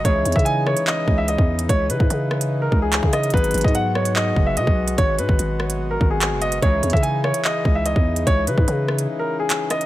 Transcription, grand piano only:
\new Staff \with { instrumentName = "Grand piano" } { \time 4/4 \key cis \dorian \tempo 4 = 146 cis''8. e''16 gis''8 cis''8 dis''8. e''16 dis''4 | cis''8 b'4.~ b'16 ais'8 gis'8. dis''8 | b'8. dis''16 fis''8 cis''8 dis''8. e''16 dis''4 | cis''8 b'4.~ b'16 ais'8 gis'8. dis''8 |
cis''8. e''16 gis''8 cis''8 dis''8. e''16 dis''4 | cis''8 b'4.~ b'16 ais'8 gis'8. dis''8 | }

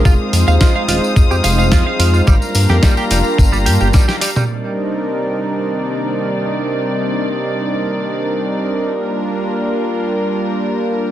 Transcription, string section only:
\new Staff \with { instrumentName = "String section" } { \time 4/4 \key c \minor \tempo 4 = 108 << { <aes' ees'''>1 | <g' bes''>1 | <c bes d''>1~ | <c bes d''>1 |
<g bes'>1 | } \\ { f''1~ | f''1 | ees1~ | ees1 |
f'1 | } >> }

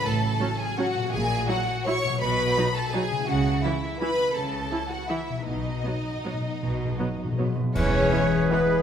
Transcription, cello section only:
\new Staff \with { instrumentName = "Cello section" } { \clef bass \time 3/4 \key e \major \tempo 4 = 163 a,4 r2 | ais,4 r2 | b,4 r2 | cis4 r2 |
cis4 r2 | b,4 r2 | b,4 r2 | e,4 r2 | }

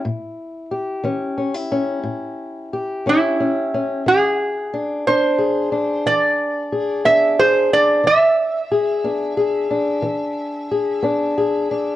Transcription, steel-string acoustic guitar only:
\new Staff \with { instrumentName = "Steel-string acoustic guitar" } { \time 12/8 \key e \dorian \tempo 4. = 60 << { r4 g'8 cis'8 cis'16 e'16 cis'4. g'8 cis'8 cis'8 cis'8 | r4 d'8 d'8 gis'8 d'4. gis'8 d'8 gis'8 d'8 | r4 gis'8 d'8 gis'8 d'4. gis'8 d'8 gis'8 d'8 | } \\ { a,4 r8 e4 r8 a,4 r8 e4 r8 | e4 r8 b4 r8 e4 r8 b4 r8 | e4 r8 b4 r8 e4 r8 b4 r8 | } >> }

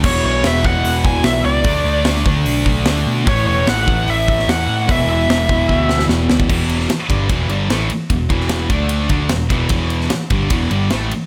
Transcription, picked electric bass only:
\new Staff \with { instrumentName = "Picked electric bass" } { \clef bass \time 4/4 \key d \lydian \tempo 4 = 149 e,,8 b,,8 e,,8 e,,8 e,,4 b,,8 cis,8 | d,8 d,8 d,8 d,8 b,,4 d,8 b,8 | a,,8 e,,8 a,,8 a,,8 a,,4 e,8 a,8 | e,,8 e,,8 e,,8 e,,8 d,4 e,,8 d,8 |
e,,4 r8 g,,8 e,,8 g,,8 a,,8 r8 | e,,8 e,,4 d,4 d,8 e,,8 e,,8 | e,,4 r8 g,,8 e,,8 g,,8 a,,8 r8 | }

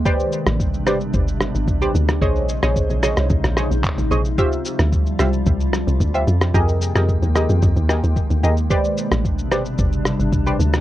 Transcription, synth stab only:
\new Staff \with { instrumentName = "Synth stab" } { \time 4/4 \key a \phrygian \tempo 4 = 111 <g' b' c'' d''>4 r8 <g' b' c'' d''>16 r4. <g' b' c'' d''>16 r8 | <aes' c'' des'' ees''>8. <aes' c'' des'' ees''>8. <aes' c'' des'' ees''>8 r8 <aes' c'' des'' ees''>16 r8. <aes' c'' des'' ees''>16 r16 | <f' g' c'' e''>4 r8 <f' g' c'' e''>16 r4. <f' g' c'' e''>16 r8 | <g' aes' bes' ees''>8. <g' aes' bes' ees''>8. <g' aes' bes' ees''>8 r8 <g' aes' bes' ees''>16 r8. <g' aes' bes' ees''>16 r16 |
<g' b' c'' d''>4 r8 <g' b' c'' d''>16 r4. <g' b' c'' d''>16 r8 | }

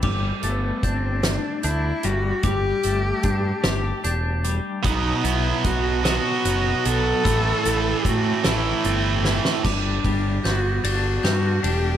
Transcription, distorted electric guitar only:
\new Staff \with { instrumentName = "Distorted electric guitar" } { \clef bass \time 6/8 \key g \major \tempo 4. = 50 r2. | r2. | <b, fis b>4. <b, fis b>4. | <a, e a>4. <a, e a>4. |
r2. | }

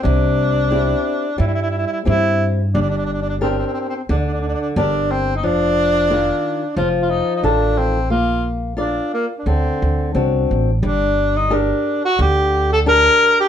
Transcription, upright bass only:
\new Staff \with { instrumentName = "Upright bass" } { \clef bass \time 4/4 \key d \phrygian \tempo 4 = 89 c,2 g,4 g,4 | g,,2 d,4 g,,4 | f,,2 f,,4 a,,4 | bes,,2 d,8 d,8 c,8 a,,8 |
\key g \minor g,,2 d,2 | }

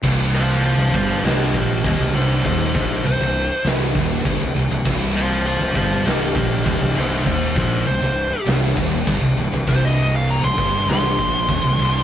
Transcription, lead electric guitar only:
\new Staff \with { instrumentName = "Lead electric guitar" } { \time 4/4 \key c \minor \tempo 4 = 100 r8 <c'' f''>8 <c'' f''>8 <c'' f''>8 <g' ees''>8 <g' ees''>8 <g' ees''>8 <ees' c''>8 | <ees' c''>8 <ees' c''>8 c''4 r2 | r8 <c'' f''>8 <c'' f''>8 <c'' f''>8 <g' ees''>8 <g' ees''>8 <g' ees''>8 <ees' c''>8 | <ees' c''>8 <ees' c''>8 c''4 r2 |
c''16 ees''8 f''16 bes''16 c'''8. c'''2 | }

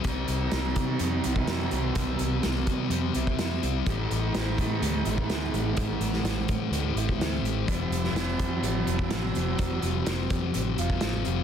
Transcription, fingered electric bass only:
\new Staff \with { instrumentName = "Fingered electric bass" } { \clef bass \time 4/4 \key c \major \tempo 4 = 126 r8 c,8 c,8 c8 f,8 c,8 f,8 c,8 | c,8 c,8 c,8 c8 f,8 c,8 f,8 c,8 | a,,8 a,,8 r8 a,8 d,8 a,,8 d,8 a,,8 | a,,8 a,,8 a,,8 a,8 d,8 a,,8 d,8 a,,8 |
f,,8 f,,8 f,,8 f,8 a,,8 f,,8 a,,8 f,,8 | f,,8 f,,8 f,,8 f,8 a,,8 f,,8 a,,8 f,,8 | }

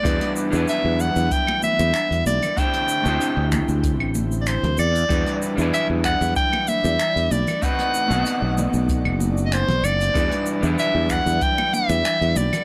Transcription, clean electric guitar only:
\new Staff \with { instrumentName = "Clean electric guitar" } { \time 4/4 \key e \minor \tempo 4 = 95 <g d' e' fis' b'>8. <fis g d' e' b'>2.~ <fis g d' e' b'>16 | <a d' e' g' c''>8. <a d' e' g' c''>2~ <a d' e' g' c''>8. r8 | <g d' e' fis' b'>8. <fis g d' e' b'>2.~ <fis g d' e' b'>16 | <a c' dis' fis' b'>8. <a b c' dis' fis'>2.~ <a b c' dis' fis'>16 |
<g d' e' fis' b'>8. <fis g d' e' b'>2.~ <fis g d' e' b'>16 | }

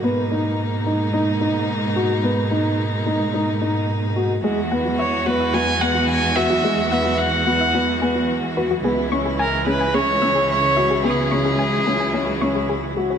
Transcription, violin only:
\new Staff \with { instrumentName = "Violin" } { \time 4/4 \key gis \minor \tempo 4 = 109 r1 | r1 | r4 cis''8 b'8 gis''8 fis''8 gis''8 e''8~ | e''8 e''8 fis''2 r4 |
r4 ais'8 b'8 cis''4 cis''4 | gis'2. r4 | }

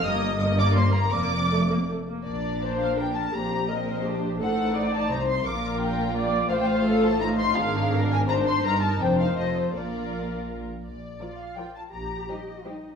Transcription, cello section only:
\new Staff \with { instrumentName = "Cello section" } { \clef bass \time 3/4 \key bes \major \tempo 4 = 167 g,2. | f,2~ f,8 r8 | bes,2. | bes,2. |
a,2 c4 | bes,2. | a,2. | aes,2. |
g,4 f,4 f,4 | bes,2~ bes,8 r8 | r4 f'2 | g'2 ees'4 | }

